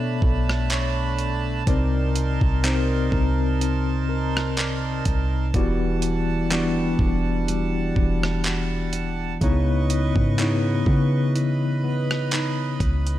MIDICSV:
0, 0, Header, 1, 6, 480
1, 0, Start_track
1, 0, Tempo, 967742
1, 829, Time_signature, 4, 2, 24, 8
1, 6542, End_track
2, 0, Start_track
2, 0, Title_t, "Accordion"
2, 0, Program_c, 0, 21
2, 0, Note_on_c, 0, 57, 79
2, 0, Note_on_c, 0, 62, 70
2, 0, Note_on_c, 0, 81, 87
2, 0, Note_on_c, 0, 83, 74
2, 810, Note_off_c, 0, 57, 0
2, 810, Note_off_c, 0, 62, 0
2, 810, Note_off_c, 0, 83, 0
2, 832, Note_on_c, 0, 63, 71
2, 832, Note_on_c, 0, 70, 76
2, 832, Note_on_c, 0, 84, 72
2, 2731, Note_off_c, 0, 63, 0
2, 2731, Note_off_c, 0, 70, 0
2, 2731, Note_off_c, 0, 84, 0
2, 2751, Note_on_c, 0, 78, 69
2, 2752, Note_on_c, 0, 55, 79
2, 4649, Note_off_c, 0, 81, 0
2, 4651, Note_off_c, 0, 55, 0
2, 4651, Note_off_c, 0, 78, 0
2, 4669, Note_on_c, 0, 71, 78
2, 4670, Note_on_c, 0, 85, 72
2, 4671, Note_on_c, 0, 75, 72
2, 5620, Note_off_c, 0, 85, 0
2, 5633, Note_on_c, 0, 83, 70
2, 6542, Note_off_c, 0, 71, 0
2, 6542, Note_off_c, 0, 75, 0
2, 6542, Note_off_c, 0, 83, 0
2, 6542, End_track
3, 0, Start_track
3, 0, Title_t, "Nylon-string guitar"
3, 0, Program_c, 1, 24
3, 0, Note_on_c, 1, 59, 87
3, 0, Note_on_c, 1, 62, 67
3, 0, Note_on_c, 1, 69, 63
3, 0, Note_on_c, 1, 73, 68
3, 104, Note_off_c, 1, 69, 0
3, 110, Note_on_c, 1, 69, 63
3, 342, Note_off_c, 1, 73, 0
3, 348, Note_on_c, 1, 73, 67
3, 825, Note_off_c, 1, 59, 0
3, 827, Note_on_c, 1, 60, 82
3, 828, Note_off_c, 1, 73, 0
3, 830, Note_on_c, 1, 74, 72
3, 881, Note_off_c, 1, 69, 0
3, 1306, Note_off_c, 1, 62, 0
3, 1308, Note_on_c, 1, 63, 63
3, 1311, Note_on_c, 1, 70, 61
3, 1312, Note_off_c, 1, 74, 0
3, 1314, Note_on_c, 1, 74, 67
3, 1541, Note_off_c, 1, 70, 0
3, 1547, Note_on_c, 1, 70, 63
3, 1783, Note_off_c, 1, 63, 0
3, 1789, Note_on_c, 1, 63, 63
3, 2021, Note_off_c, 1, 70, 0
3, 2027, Note_on_c, 1, 70, 62
3, 2265, Note_off_c, 1, 74, 0
3, 2267, Note_on_c, 1, 74, 72
3, 2748, Note_off_c, 1, 60, 0
3, 2748, Note_off_c, 1, 70, 0
3, 2748, Note_on_c, 1, 52, 88
3, 2751, Note_on_c, 1, 66, 69
3, 2801, Note_off_c, 1, 63, 0
3, 3229, Note_on_c, 1, 55, 68
3, 3230, Note_off_c, 1, 66, 0
3, 3232, Note_on_c, 1, 62, 66
3, 3235, Note_on_c, 1, 66, 75
3, 3463, Note_off_c, 1, 62, 0
3, 3469, Note_on_c, 1, 62, 61
3, 3703, Note_off_c, 1, 55, 0
3, 3709, Note_on_c, 1, 55, 66
3, 3943, Note_off_c, 1, 62, 0
3, 3949, Note_on_c, 1, 62, 62
3, 4003, Note_off_c, 1, 74, 0
3, 4182, Note_off_c, 1, 66, 0
3, 4188, Note_on_c, 1, 66, 71
3, 4665, Note_off_c, 1, 52, 0
3, 4667, Note_on_c, 1, 49, 84
3, 4668, Note_off_c, 1, 66, 0
3, 4671, Note_on_c, 1, 63, 72
3, 4721, Note_off_c, 1, 55, 0
3, 4721, Note_off_c, 1, 62, 0
3, 5148, Note_on_c, 1, 52, 66
3, 5149, Note_off_c, 1, 63, 0
3, 5151, Note_on_c, 1, 59, 67
3, 5154, Note_on_c, 1, 63, 73
3, 5388, Note_off_c, 1, 59, 0
3, 5390, Note_on_c, 1, 59, 62
3, 5622, Note_off_c, 1, 52, 0
3, 5628, Note_on_c, 1, 52, 66
3, 5868, Note_off_c, 1, 59, 0
3, 5870, Note_on_c, 1, 59, 64
3, 6104, Note_off_c, 1, 63, 0
3, 6110, Note_on_c, 1, 63, 72
3, 6542, Note_off_c, 1, 49, 0
3, 6542, Note_off_c, 1, 52, 0
3, 6542, Note_off_c, 1, 59, 0
3, 6542, Note_off_c, 1, 63, 0
3, 6542, End_track
4, 0, Start_track
4, 0, Title_t, "Tine electric piano"
4, 0, Program_c, 2, 4
4, 0, Control_c, 2, 64, 127
4, 0, Note_on_c, 2, 47, 84
4, 0, Note_on_c, 2, 59, 77
4, 0, Note_on_c, 2, 62, 79
4, 0, Note_on_c, 2, 69, 80
4, 0, Note_on_c, 2, 73, 94
4, 104, Note_off_c, 2, 47, 0
4, 106, Note_off_c, 2, 59, 0
4, 107, Note_off_c, 2, 62, 0
4, 108, Note_off_c, 2, 69, 0
4, 110, Note_off_c, 2, 73, 0
4, 826, Note_on_c, 2, 48, 87
4, 827, Note_on_c, 2, 60, 80
4, 831, Note_on_c, 2, 63, 76
4, 834, Note_on_c, 2, 70, 77
4, 836, Control_c, 2, 64, 0
4, 836, Note_on_c, 2, 74, 92
4, 933, Control_c, 2, 64, 127
4, 1195, Note_off_c, 2, 48, 0
4, 1196, Note_off_c, 2, 60, 0
4, 1198, Note_off_c, 2, 63, 0
4, 1199, Note_off_c, 2, 70, 0
4, 1200, Note_off_c, 2, 74, 0
4, 1306, Note_on_c, 2, 48, 81
4, 1309, Note_on_c, 2, 60, 78
4, 1311, Note_on_c, 2, 63, 78
4, 1314, Note_on_c, 2, 70, 78
4, 1317, Note_on_c, 2, 72, 92
4, 2025, Note_off_c, 2, 48, 0
4, 2026, Note_off_c, 2, 60, 0
4, 2027, Note_off_c, 2, 63, 0
4, 2029, Note_off_c, 2, 70, 0
4, 2030, Note_off_c, 2, 72, 0
4, 2747, Note_on_c, 2, 52, 84
4, 2751, Note_on_c, 2, 59, 80
4, 2753, Note_on_c, 2, 66, 80
4, 2755, Control_c, 2, 64, 0
4, 2756, Note_on_c, 2, 67, 79
4, 2758, Note_on_c, 2, 74, 100
4, 2839, Control_c, 2, 64, 127
4, 3116, Note_off_c, 2, 52, 0
4, 3118, Note_off_c, 2, 59, 0
4, 3119, Note_off_c, 2, 66, 0
4, 3120, Note_off_c, 2, 67, 0
4, 3121, Note_off_c, 2, 74, 0
4, 3230, Note_on_c, 2, 52, 89
4, 3233, Note_on_c, 2, 59, 75
4, 3234, Note_on_c, 2, 66, 81
4, 3237, Note_on_c, 2, 67, 79
4, 3241, Note_on_c, 2, 74, 94
4, 3947, Note_off_c, 2, 52, 0
4, 3948, Note_off_c, 2, 59, 0
4, 3949, Note_off_c, 2, 66, 0
4, 3950, Note_off_c, 2, 67, 0
4, 3952, Note_off_c, 2, 74, 0
4, 4668, Note_on_c, 2, 49, 89
4, 4670, Note_on_c, 2, 59, 79
4, 4673, Note_on_c, 2, 63, 83
4, 4676, Control_c, 2, 64, 0
4, 4676, Note_on_c, 2, 64, 78
4, 4678, Note_on_c, 2, 73, 99
4, 4765, Control_c, 2, 64, 127
4, 5036, Note_off_c, 2, 49, 0
4, 5037, Note_off_c, 2, 59, 0
4, 5039, Note_off_c, 2, 63, 0
4, 5040, Note_off_c, 2, 64, 0
4, 5041, Note_off_c, 2, 73, 0
4, 5149, Note_on_c, 2, 49, 82
4, 5152, Note_on_c, 2, 59, 76
4, 5154, Note_on_c, 2, 63, 79
4, 5158, Note_on_c, 2, 64, 82
4, 5160, Note_on_c, 2, 73, 92
4, 5866, Note_off_c, 2, 49, 0
4, 5867, Note_off_c, 2, 59, 0
4, 5869, Note_off_c, 2, 63, 0
4, 5871, Note_off_c, 2, 64, 0
4, 5872, Note_off_c, 2, 73, 0
4, 6542, End_track
5, 0, Start_track
5, 0, Title_t, "808-style bass"
5, 0, Program_c, 3, 38
5, 110, Note_on_c, 3, 35, 105
5, 810, Note_off_c, 3, 35, 0
5, 830, Note_on_c, 3, 36, 108
5, 1184, Note_off_c, 3, 36, 0
5, 1198, Note_on_c, 3, 36, 106
5, 1535, Note_off_c, 3, 36, 0
5, 1548, Note_on_c, 3, 36, 106
5, 2488, Note_off_c, 3, 36, 0
5, 2509, Note_on_c, 3, 36, 101
5, 2739, Note_off_c, 3, 36, 0
5, 2749, Note_on_c, 3, 28, 116
5, 3449, Note_off_c, 3, 28, 0
5, 3467, Note_on_c, 3, 28, 104
5, 3929, Note_off_c, 3, 28, 0
5, 3951, Note_on_c, 3, 28, 100
5, 4650, Note_off_c, 3, 28, 0
5, 4669, Note_on_c, 3, 37, 117
5, 5024, Note_off_c, 3, 37, 0
5, 5038, Note_on_c, 3, 44, 104
5, 5375, Note_off_c, 3, 44, 0
5, 5389, Note_on_c, 3, 49, 100
5, 6329, Note_off_c, 3, 49, 0
5, 6351, Note_on_c, 3, 37, 96
5, 6542, Note_off_c, 3, 37, 0
5, 6542, End_track
6, 0, Start_track
6, 0, Title_t, "Drums"
6, 110, Note_on_c, 9, 36, 100
6, 159, Note_off_c, 9, 36, 0
6, 245, Note_on_c, 9, 37, 92
6, 295, Note_off_c, 9, 37, 0
6, 347, Note_on_c, 9, 42, 75
6, 353, Note_on_c, 9, 39, 124
6, 396, Note_off_c, 9, 42, 0
6, 403, Note_off_c, 9, 39, 0
6, 588, Note_on_c, 9, 42, 66
6, 638, Note_off_c, 9, 42, 0
6, 829, Note_on_c, 9, 36, 117
6, 829, Note_on_c, 9, 42, 69
6, 878, Note_off_c, 9, 42, 0
6, 879, Note_off_c, 9, 36, 0
6, 1069, Note_on_c, 9, 42, 77
6, 1119, Note_off_c, 9, 42, 0
6, 1197, Note_on_c, 9, 36, 92
6, 1247, Note_off_c, 9, 36, 0
6, 1308, Note_on_c, 9, 42, 75
6, 1313, Note_on_c, 9, 39, 118
6, 1358, Note_off_c, 9, 42, 0
6, 1363, Note_off_c, 9, 39, 0
6, 1548, Note_on_c, 9, 36, 91
6, 1597, Note_off_c, 9, 36, 0
6, 1792, Note_on_c, 9, 42, 68
6, 1842, Note_off_c, 9, 42, 0
6, 2166, Note_on_c, 9, 37, 95
6, 2216, Note_off_c, 9, 37, 0
6, 2266, Note_on_c, 9, 42, 71
6, 2273, Note_on_c, 9, 39, 115
6, 2316, Note_off_c, 9, 42, 0
6, 2322, Note_off_c, 9, 39, 0
6, 2507, Note_on_c, 9, 42, 68
6, 2509, Note_on_c, 9, 36, 95
6, 2556, Note_off_c, 9, 42, 0
6, 2558, Note_off_c, 9, 36, 0
6, 2748, Note_on_c, 9, 42, 70
6, 2749, Note_on_c, 9, 36, 114
6, 2798, Note_off_c, 9, 36, 0
6, 2798, Note_off_c, 9, 42, 0
6, 2987, Note_on_c, 9, 42, 77
6, 3036, Note_off_c, 9, 42, 0
6, 3226, Note_on_c, 9, 42, 76
6, 3232, Note_on_c, 9, 39, 122
6, 3276, Note_off_c, 9, 42, 0
6, 3281, Note_off_c, 9, 39, 0
6, 3467, Note_on_c, 9, 36, 92
6, 3517, Note_off_c, 9, 36, 0
6, 3712, Note_on_c, 9, 42, 72
6, 3762, Note_off_c, 9, 42, 0
6, 3949, Note_on_c, 9, 36, 96
6, 3999, Note_off_c, 9, 36, 0
6, 4084, Note_on_c, 9, 37, 94
6, 4134, Note_off_c, 9, 37, 0
6, 4186, Note_on_c, 9, 42, 77
6, 4192, Note_on_c, 9, 39, 127
6, 4235, Note_off_c, 9, 42, 0
6, 4242, Note_off_c, 9, 39, 0
6, 4428, Note_on_c, 9, 42, 67
6, 4478, Note_off_c, 9, 42, 0
6, 4669, Note_on_c, 9, 36, 121
6, 4669, Note_on_c, 9, 42, 74
6, 4719, Note_off_c, 9, 36, 0
6, 4719, Note_off_c, 9, 42, 0
6, 4910, Note_on_c, 9, 42, 75
6, 4960, Note_off_c, 9, 42, 0
6, 5038, Note_on_c, 9, 36, 96
6, 5087, Note_off_c, 9, 36, 0
6, 5149, Note_on_c, 9, 42, 75
6, 5154, Note_on_c, 9, 39, 117
6, 5198, Note_off_c, 9, 42, 0
6, 5204, Note_off_c, 9, 39, 0
6, 5388, Note_on_c, 9, 36, 92
6, 5438, Note_off_c, 9, 36, 0
6, 5632, Note_on_c, 9, 42, 69
6, 5682, Note_off_c, 9, 42, 0
6, 6005, Note_on_c, 9, 37, 97
6, 6055, Note_off_c, 9, 37, 0
6, 6108, Note_on_c, 9, 42, 70
6, 6114, Note_on_c, 9, 39, 118
6, 6157, Note_off_c, 9, 42, 0
6, 6164, Note_off_c, 9, 39, 0
6, 6350, Note_on_c, 9, 36, 94
6, 6351, Note_on_c, 9, 42, 41
6, 6400, Note_off_c, 9, 36, 0
6, 6401, Note_off_c, 9, 42, 0
6, 6481, Note_on_c, 9, 42, 73
6, 6530, Note_off_c, 9, 42, 0
6, 6542, End_track
0, 0, End_of_file